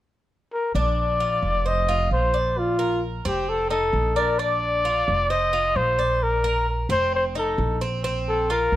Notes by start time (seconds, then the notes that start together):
0.53 A#4
0.75 A#1 D4 D5
1.20 F4
1.42 F1
1.66 C5 D#5
1.89 F4
2.11 A#1 C5
2.34 D5
2.58 F4
2.79 A#4
3.25 F1 C4 G4
3.49 A4
3.71 D#4 A4
3.93 A#1
4.16 D4 A#4
4.39 D4 D5
4.85 F4
5.08 F1
5.30 C5 D#5
5.53 F4
5.76 A#1 C5
5.99 D5
6.23 A#4
6.44 A#4
6.89 F1 C4 C5
7.15 C5
7.35 D#4 A4
7.58 A#1
7.81 C4
8.04 C4
8.28 A4
8.50 F4 A#4
8.72 D2